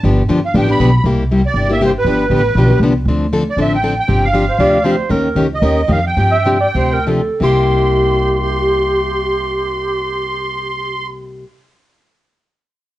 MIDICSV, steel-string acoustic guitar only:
0, 0, Header, 1, 2, 480
1, 0, Start_track
1, 0, Tempo, 253271
1, 64, Time_signature, 4, 2, 24, 8
1, 10144, Tempo, 271985
1, 12064, Tempo, 324675
1, 13504, Tempo, 361228
1, 20909, End_track
2, 0, Start_track
2, 0, Title_t, "Steel-string acoustic guitar"
2, 0, Program_c, 0, 25
2, 70, Note_on_c, 0, 50, 60
2, 80, Note_on_c, 0, 53, 67
2, 90, Note_on_c, 0, 59, 58
2, 91, Note_on_c, 0, 62, 70
2, 98, Note_on_c, 0, 67, 70
2, 407, Note_off_c, 0, 50, 0
2, 412, Note_off_c, 0, 53, 0
2, 417, Note_off_c, 0, 59, 0
2, 417, Note_off_c, 0, 62, 0
2, 421, Note_off_c, 0, 67, 0
2, 546, Note_on_c, 0, 50, 76
2, 554, Note_on_c, 0, 59, 73
2, 555, Note_on_c, 0, 53, 90
2, 571, Note_on_c, 0, 62, 81
2, 575, Note_on_c, 0, 67, 89
2, 733, Note_off_c, 0, 50, 0
2, 738, Note_off_c, 0, 53, 0
2, 738, Note_off_c, 0, 59, 0
2, 746, Note_off_c, 0, 62, 0
2, 748, Note_off_c, 0, 67, 0
2, 1030, Note_on_c, 0, 50, 67
2, 1042, Note_on_c, 0, 59, 68
2, 1044, Note_on_c, 0, 53, 64
2, 1047, Note_on_c, 0, 62, 72
2, 1058, Note_on_c, 0, 67, 71
2, 1266, Note_off_c, 0, 67, 0
2, 1279, Note_off_c, 0, 62, 0
2, 1280, Note_off_c, 0, 50, 0
2, 1286, Note_off_c, 0, 59, 0
2, 1287, Note_off_c, 0, 53, 0
2, 1289, Note_on_c, 0, 67, 61
2, 1302, Note_on_c, 0, 62, 58
2, 1334, Note_on_c, 0, 59, 45
2, 1494, Note_off_c, 0, 67, 0
2, 1495, Note_off_c, 0, 59, 0
2, 1500, Note_on_c, 0, 50, 74
2, 1501, Note_off_c, 0, 62, 0
2, 1517, Note_on_c, 0, 59, 82
2, 1518, Note_on_c, 0, 53, 76
2, 1528, Note_on_c, 0, 62, 75
2, 1538, Note_on_c, 0, 67, 76
2, 1690, Note_off_c, 0, 50, 0
2, 1699, Note_off_c, 0, 53, 0
2, 1699, Note_off_c, 0, 59, 0
2, 1704, Note_off_c, 0, 62, 0
2, 1709, Note_off_c, 0, 67, 0
2, 1994, Note_on_c, 0, 48, 59
2, 2003, Note_on_c, 0, 58, 68
2, 2005, Note_on_c, 0, 55, 61
2, 2010, Note_on_c, 0, 64, 69
2, 2017, Note_on_c, 0, 67, 62
2, 2327, Note_off_c, 0, 48, 0
2, 2332, Note_off_c, 0, 58, 0
2, 2333, Note_off_c, 0, 55, 0
2, 2335, Note_off_c, 0, 64, 0
2, 2339, Note_off_c, 0, 67, 0
2, 2487, Note_on_c, 0, 48, 81
2, 2496, Note_on_c, 0, 55, 81
2, 2497, Note_on_c, 0, 58, 81
2, 2503, Note_on_c, 0, 64, 76
2, 2516, Note_on_c, 0, 67, 87
2, 2663, Note_off_c, 0, 48, 0
2, 2667, Note_off_c, 0, 55, 0
2, 2668, Note_off_c, 0, 58, 0
2, 2671, Note_off_c, 0, 64, 0
2, 2678, Note_off_c, 0, 67, 0
2, 2950, Note_on_c, 0, 48, 61
2, 2962, Note_on_c, 0, 58, 63
2, 2964, Note_on_c, 0, 55, 69
2, 2965, Note_on_c, 0, 64, 67
2, 2973, Note_on_c, 0, 67, 70
2, 3186, Note_off_c, 0, 67, 0
2, 3200, Note_off_c, 0, 48, 0
2, 3206, Note_off_c, 0, 58, 0
2, 3207, Note_off_c, 0, 55, 0
2, 3207, Note_off_c, 0, 64, 0
2, 3209, Note_on_c, 0, 67, 51
2, 3227, Note_on_c, 0, 64, 49
2, 3239, Note_on_c, 0, 58, 44
2, 3411, Note_off_c, 0, 58, 0
2, 3413, Note_off_c, 0, 67, 0
2, 3414, Note_off_c, 0, 64, 0
2, 3423, Note_on_c, 0, 48, 66
2, 3429, Note_on_c, 0, 55, 71
2, 3434, Note_on_c, 0, 58, 85
2, 3436, Note_on_c, 0, 64, 79
2, 3452, Note_on_c, 0, 67, 85
2, 3611, Note_off_c, 0, 48, 0
2, 3614, Note_off_c, 0, 55, 0
2, 3617, Note_off_c, 0, 58, 0
2, 3618, Note_off_c, 0, 64, 0
2, 3626, Note_off_c, 0, 67, 0
2, 3894, Note_on_c, 0, 50, 61
2, 3908, Note_on_c, 0, 53, 63
2, 3919, Note_on_c, 0, 59, 60
2, 3925, Note_on_c, 0, 67, 68
2, 3930, Note_on_c, 0, 62, 62
2, 4237, Note_off_c, 0, 50, 0
2, 4244, Note_off_c, 0, 53, 0
2, 4250, Note_off_c, 0, 59, 0
2, 4253, Note_off_c, 0, 67, 0
2, 4255, Note_off_c, 0, 62, 0
2, 4373, Note_on_c, 0, 53, 75
2, 4377, Note_on_c, 0, 50, 74
2, 4381, Note_on_c, 0, 62, 83
2, 4383, Note_on_c, 0, 67, 91
2, 4388, Note_on_c, 0, 59, 81
2, 4566, Note_off_c, 0, 53, 0
2, 4568, Note_off_c, 0, 50, 0
2, 4570, Note_off_c, 0, 62, 0
2, 4571, Note_off_c, 0, 67, 0
2, 4574, Note_off_c, 0, 59, 0
2, 4877, Note_on_c, 0, 53, 62
2, 4880, Note_on_c, 0, 59, 64
2, 4881, Note_on_c, 0, 50, 60
2, 4887, Note_on_c, 0, 62, 68
2, 4901, Note_on_c, 0, 67, 73
2, 5092, Note_off_c, 0, 67, 0
2, 5115, Note_on_c, 0, 67, 57
2, 5120, Note_off_c, 0, 62, 0
2, 5123, Note_off_c, 0, 53, 0
2, 5125, Note_off_c, 0, 50, 0
2, 5125, Note_off_c, 0, 59, 0
2, 5143, Note_on_c, 0, 62, 50
2, 5167, Note_on_c, 0, 59, 44
2, 5326, Note_off_c, 0, 67, 0
2, 5339, Note_off_c, 0, 59, 0
2, 5341, Note_off_c, 0, 62, 0
2, 5357, Note_on_c, 0, 50, 77
2, 5357, Note_on_c, 0, 53, 73
2, 5362, Note_on_c, 0, 59, 79
2, 5376, Note_on_c, 0, 62, 86
2, 5377, Note_on_c, 0, 67, 76
2, 5538, Note_off_c, 0, 50, 0
2, 5538, Note_off_c, 0, 53, 0
2, 5540, Note_off_c, 0, 59, 0
2, 5547, Note_off_c, 0, 62, 0
2, 5548, Note_off_c, 0, 67, 0
2, 5833, Note_on_c, 0, 50, 55
2, 5841, Note_on_c, 0, 60, 58
2, 5843, Note_on_c, 0, 53, 62
2, 5847, Note_on_c, 0, 62, 70
2, 5854, Note_on_c, 0, 69, 60
2, 6167, Note_off_c, 0, 50, 0
2, 6171, Note_off_c, 0, 60, 0
2, 6172, Note_off_c, 0, 53, 0
2, 6174, Note_off_c, 0, 62, 0
2, 6177, Note_off_c, 0, 69, 0
2, 6304, Note_on_c, 0, 53, 76
2, 6305, Note_on_c, 0, 50, 72
2, 6308, Note_on_c, 0, 62, 83
2, 6313, Note_on_c, 0, 60, 81
2, 6317, Note_on_c, 0, 69, 86
2, 6492, Note_off_c, 0, 50, 0
2, 6492, Note_off_c, 0, 53, 0
2, 6494, Note_off_c, 0, 62, 0
2, 6496, Note_off_c, 0, 60, 0
2, 6498, Note_off_c, 0, 69, 0
2, 6776, Note_on_c, 0, 50, 60
2, 6777, Note_on_c, 0, 53, 59
2, 6787, Note_on_c, 0, 60, 62
2, 6796, Note_on_c, 0, 62, 65
2, 6798, Note_on_c, 0, 69, 65
2, 7119, Note_off_c, 0, 50, 0
2, 7119, Note_off_c, 0, 53, 0
2, 7124, Note_off_c, 0, 60, 0
2, 7128, Note_off_c, 0, 62, 0
2, 7129, Note_off_c, 0, 69, 0
2, 7258, Note_on_c, 0, 50, 73
2, 7264, Note_on_c, 0, 60, 74
2, 7269, Note_on_c, 0, 53, 69
2, 7275, Note_on_c, 0, 69, 76
2, 7283, Note_on_c, 0, 62, 74
2, 7449, Note_off_c, 0, 50, 0
2, 7452, Note_off_c, 0, 60, 0
2, 7454, Note_off_c, 0, 53, 0
2, 7457, Note_off_c, 0, 69, 0
2, 7461, Note_off_c, 0, 62, 0
2, 7728, Note_on_c, 0, 48, 53
2, 7733, Note_on_c, 0, 53, 62
2, 7733, Note_on_c, 0, 60, 62
2, 7741, Note_on_c, 0, 62, 62
2, 7749, Note_on_c, 0, 67, 63
2, 8075, Note_off_c, 0, 48, 0
2, 8077, Note_off_c, 0, 53, 0
2, 8077, Note_off_c, 0, 60, 0
2, 8081, Note_off_c, 0, 62, 0
2, 8085, Note_off_c, 0, 67, 0
2, 8214, Note_on_c, 0, 53, 84
2, 8215, Note_on_c, 0, 48, 73
2, 8232, Note_on_c, 0, 62, 71
2, 8237, Note_on_c, 0, 60, 81
2, 8239, Note_on_c, 0, 67, 80
2, 8407, Note_off_c, 0, 48, 0
2, 8407, Note_off_c, 0, 53, 0
2, 8416, Note_off_c, 0, 62, 0
2, 8418, Note_off_c, 0, 60, 0
2, 8419, Note_off_c, 0, 67, 0
2, 8697, Note_on_c, 0, 48, 60
2, 8708, Note_on_c, 0, 53, 61
2, 8715, Note_on_c, 0, 60, 69
2, 8716, Note_on_c, 0, 62, 66
2, 8731, Note_on_c, 0, 67, 68
2, 9039, Note_off_c, 0, 48, 0
2, 9045, Note_off_c, 0, 53, 0
2, 9048, Note_off_c, 0, 60, 0
2, 9049, Note_off_c, 0, 62, 0
2, 9056, Note_off_c, 0, 67, 0
2, 9169, Note_on_c, 0, 48, 70
2, 9176, Note_on_c, 0, 53, 74
2, 9194, Note_on_c, 0, 60, 75
2, 9204, Note_on_c, 0, 62, 72
2, 9205, Note_on_c, 0, 67, 77
2, 9364, Note_off_c, 0, 48, 0
2, 9368, Note_off_c, 0, 53, 0
2, 9377, Note_off_c, 0, 60, 0
2, 9382, Note_off_c, 0, 62, 0
2, 9382, Note_off_c, 0, 67, 0
2, 9652, Note_on_c, 0, 51, 61
2, 9653, Note_on_c, 0, 58, 60
2, 9671, Note_on_c, 0, 61, 61
2, 9671, Note_on_c, 0, 70, 68
2, 9678, Note_on_c, 0, 67, 68
2, 9998, Note_off_c, 0, 51, 0
2, 9999, Note_off_c, 0, 58, 0
2, 10007, Note_off_c, 0, 61, 0
2, 10007, Note_off_c, 0, 70, 0
2, 10011, Note_off_c, 0, 67, 0
2, 10155, Note_on_c, 0, 51, 77
2, 10160, Note_on_c, 0, 58, 84
2, 10160, Note_on_c, 0, 61, 77
2, 10179, Note_on_c, 0, 67, 76
2, 10179, Note_on_c, 0, 70, 75
2, 10328, Note_off_c, 0, 51, 0
2, 10331, Note_off_c, 0, 58, 0
2, 10331, Note_off_c, 0, 61, 0
2, 10340, Note_off_c, 0, 67, 0
2, 10340, Note_off_c, 0, 70, 0
2, 10614, Note_on_c, 0, 51, 59
2, 10617, Note_on_c, 0, 58, 55
2, 10619, Note_on_c, 0, 67, 65
2, 10627, Note_on_c, 0, 70, 63
2, 10628, Note_on_c, 0, 61, 69
2, 10938, Note_off_c, 0, 51, 0
2, 10939, Note_off_c, 0, 58, 0
2, 10941, Note_off_c, 0, 67, 0
2, 10944, Note_off_c, 0, 70, 0
2, 10945, Note_off_c, 0, 61, 0
2, 11070, Note_on_c, 0, 58, 72
2, 11071, Note_on_c, 0, 51, 66
2, 11079, Note_on_c, 0, 61, 77
2, 11084, Note_on_c, 0, 67, 73
2, 11097, Note_on_c, 0, 70, 75
2, 11259, Note_off_c, 0, 58, 0
2, 11260, Note_off_c, 0, 51, 0
2, 11263, Note_off_c, 0, 61, 0
2, 11266, Note_off_c, 0, 67, 0
2, 11272, Note_off_c, 0, 70, 0
2, 11575, Note_on_c, 0, 48, 58
2, 11585, Note_on_c, 0, 53, 61
2, 11587, Note_on_c, 0, 60, 59
2, 11589, Note_on_c, 0, 62, 61
2, 11598, Note_on_c, 0, 67, 66
2, 11923, Note_off_c, 0, 48, 0
2, 11927, Note_off_c, 0, 53, 0
2, 11929, Note_off_c, 0, 60, 0
2, 11930, Note_off_c, 0, 62, 0
2, 11934, Note_off_c, 0, 67, 0
2, 12081, Note_on_c, 0, 48, 73
2, 12082, Note_on_c, 0, 53, 80
2, 12093, Note_on_c, 0, 62, 83
2, 12096, Note_on_c, 0, 60, 75
2, 12105, Note_on_c, 0, 67, 80
2, 12246, Note_off_c, 0, 48, 0
2, 12247, Note_off_c, 0, 53, 0
2, 12252, Note_off_c, 0, 62, 0
2, 12254, Note_off_c, 0, 60, 0
2, 12258, Note_off_c, 0, 67, 0
2, 12530, Note_on_c, 0, 60, 66
2, 12531, Note_on_c, 0, 48, 53
2, 12532, Note_on_c, 0, 53, 61
2, 12535, Note_on_c, 0, 62, 58
2, 12542, Note_on_c, 0, 67, 61
2, 12856, Note_off_c, 0, 60, 0
2, 12857, Note_off_c, 0, 48, 0
2, 12857, Note_off_c, 0, 53, 0
2, 12858, Note_off_c, 0, 62, 0
2, 12862, Note_off_c, 0, 67, 0
2, 12987, Note_on_c, 0, 48, 68
2, 12994, Note_on_c, 0, 53, 71
2, 13002, Note_on_c, 0, 60, 75
2, 13002, Note_on_c, 0, 62, 82
2, 13010, Note_on_c, 0, 67, 85
2, 13186, Note_off_c, 0, 48, 0
2, 13189, Note_off_c, 0, 53, 0
2, 13193, Note_off_c, 0, 62, 0
2, 13194, Note_off_c, 0, 60, 0
2, 13197, Note_off_c, 0, 67, 0
2, 13483, Note_on_c, 0, 48, 69
2, 13500, Note_on_c, 0, 55, 65
2, 13510, Note_on_c, 0, 58, 74
2, 13516, Note_on_c, 0, 64, 75
2, 13529, Note_on_c, 0, 67, 82
2, 18848, Note_off_c, 0, 48, 0
2, 18863, Note_off_c, 0, 55, 0
2, 18872, Note_off_c, 0, 58, 0
2, 18878, Note_off_c, 0, 64, 0
2, 18892, Note_off_c, 0, 67, 0
2, 20909, End_track
0, 0, End_of_file